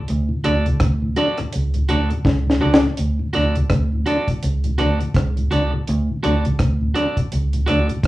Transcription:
0.08 D2, closed hi-hat
0.29 D2 A2
0.44 D2 F#3 A3 D4 F#4 A4 D5, closed hi-hat
0.66 C#2 D2 A2, closed hi-hat
0.80 D2, kick, cross-stick, closed hi-hat
1.02 D2 A2
1.16 F#3 A3 D4 F#4 A4 D5, closed hi-hat
1.38 D2 A2, cross-stick, closed hi-hat
1.53 C#2, closed hi-hat
1.74 D2 A2, closed hi-hat
1.89 D2 F#3 A3 D4 F#4 A4 D5, closed hi-hat
2.10 D2 A2, muted clean electric guitar stroke, closed hi-hat
2.25 C#2, kick, snare
2.47 D2 A2, snare
2.61 C#2 F#3 A3 D4 F#4 A4 D5
2.74 snare
2.83 D2 A2
2.97 D2, closed hi-hat
3.19 D2 A2
3.33 D2 F#3 A3 D4 F#4 A4 D5, closed hi-hat
3.55 C#2 D2 A2, closed hi-hat
3.70 D2, kick, cross-stick, closed hi-hat
3.92 D2 A2
4.06 F#3 A3 D4 F#4 A4 D5, closed hi-hat
4.28 D2 A2, kick, closed hi-hat
4.43 C#2, closed hi-hat
4.64 D2 A2, closed hi-hat
4.78 D2 F#3 A3 D4 F#4 A4 D5, cross-stick, closed hi-hat
5.00 D2 A2, muted clean electric guitar stroke, closed hi-hat
5.14 C#2, kick, cross-stick, closed hi-hat
5.36 D2 A2, closed hi-hat
5.51 C#2 F#3 A3 D4 F#4 A4 D5, closed hi-hat
5.73 D2 A2, muted clean electric guitar stroke
5.87 D2, closed hi-hat
6.09 D2 A2
6.23 D2 F#3 A3 D4 F#4 A4 D5, closed hi-hat
6.45 C#2 D2 A2, closed hi-hat
6.59 D2, kick, cross-stick, closed hi-hat
6.81 D2 A2
6.94 F#3 A3 D4 F#4 A4 D5, closed hi-hat
7.17 D2 A2, kick, closed hi-hat
7.32 C#2, closed hi-hat
7.53 D2 A2, closed hi-hat
7.66 D2 F#3 A3 D4 F#4 A4 D5, cross-stick, closed hi-hat
7.88 D2 A2, muted clean electric guitar stroke, closed hi-hat
8.03 C#2, kick, closed hi-hat

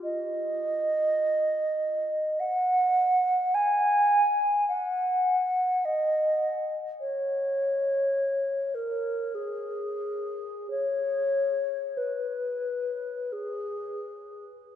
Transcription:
0.04 D#5
2.40 F#5
3.54 G#5
4.68 F#5
5.85 D#5
7.00 C#5
8.75 A#4
9.35 G#4
10.70 C#5
11.97 B4
13.32 G#4

